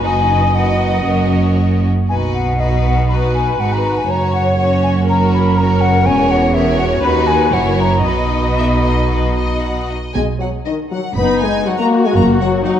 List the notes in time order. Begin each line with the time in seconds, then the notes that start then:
0.03 F#1 F#2 D#4 F#4 B4 D#5 G#5
0.54 D#4 F#4 B4 F#5
1.05 F#1 F#2 C#4 F#4 A#4
2.08 B1 B2 D#4 F#4 B4 G#5
2.34 F#5
2.59 D#4 F#4 B4 D#5
2.85 F#5
3.08 D#4 F#4 B4 B5
3.35 G#5
3.58 G#1 G#2 D#4 F#4 B4 F#5
3.73 A#5
3.98 G#5
4.08 F#1 F#2 C#4 F#4 C#5 A#5
4.35 F#5
4.58 C#4 F#4 C#5 F#5
4.83 G#5
5.08 C#4 F#4 A#4 C#5 A#5
5.34 B5
5.56 C#4 F#4 C#5 A#5
5.81 F#5
6.05 E1 E2 C#4 F#4 A#4 C#5 G#5
6.31 F#5
6.54 C#4 F#4 A#4 C#5 E5
6.78 F#5
7.02 D#2 D#4 F#4 B4 B5
7.27 G#5
7.52 F#1 F#2 E4 F#4 A#4 C#5 F#5
7.80 A#5
8.03 B1 B2 D#4 F#4 B4 D#5 B5
8.58 E5
8.84 D#5
9.10 B4
9.35 D#5
9.61 F#5
9.89 D#5
10.14 B1 B2 G#3 G#5
10.39 F#3 F#5
10.66 D#3 D#4 D#5
10.91 F#3 F#5
11.15 F#1 F#2 B3 D#4 B5
11.40 G#3 G#5
11.66 F#3 D#4 F#4 F#5
11.77 A#3 A#5
12.04 G#3 G#5
12.14 F#1 F#2 A#3 A#5
12.41 F#3 F#5
12.64 F#3 D#4 F#4 F#5